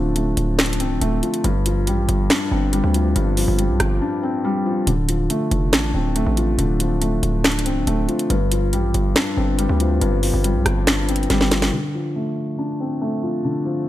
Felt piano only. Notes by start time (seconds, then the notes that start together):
Already playing: D3 F3 A3 C4 D4
0.16 A3
0.59 D4
0.80 C4
1.01 A3
1.23 F3
1.44 G2
1.66 F3
1.87 G3
2.30 D4
2.51 C4
2.73 G3
2.94 F3
3.15 G2
3.37 F3
3.59 G3
4.01 D4
4.23 C4
4.45 G3
4.66 F3
4.87 D3
5.09 F3
5.30 A3
5.73 D4
5.95 C4
6.16 A3
6.37 F3
6.59 D3
6.80 F3
7.02 A3
7.44 D4
7.66 C4
7.87 A3
8.08 F3
8.30 G2
8.52 F3
8.73 G3
9.16 D4
9.37 C4
9.58 G3
9.80 F3
10.01 G2
10.23 F3
10.44 G3
10.87 D4
11.09 C4
11.30 G3
11.52 F3
11.73 D3
11.94 F3
12.16 A3
12.58 D4
12.80 C4
13.02 A3
13.23 F3
13.44 D3
13.66 F3